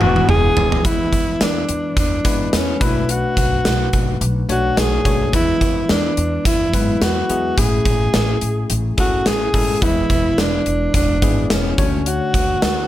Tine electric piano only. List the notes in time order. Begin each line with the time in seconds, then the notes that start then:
Already playing: E3 G#3 B3 D4 E4 B4
0.84 E3 G#3 B3 E4 B4
2.24 G#3 B3 E4 B4
2.80 B2 A3 D4 F#4 B4
4.48 A3 D4 F#4 C#5
5.05 A3 D4 F#4 C#5
5.33 E3 G#3 B3 E4 B4
6.73 F#3 B3 E4 B4
6.80 G#3
7.29 G#3 B3 E4 G#4
7.57 A2 A3 C#4 E4 G#4
8.97 C#4 E4 G#4 A4
9.54 G#3 C#4 E4 A4
9.81 E3 G#3 B3 E4 B4
11.22 G#3 B3 E4 G#4
11.78 D3 A3 D4 F#4 C#5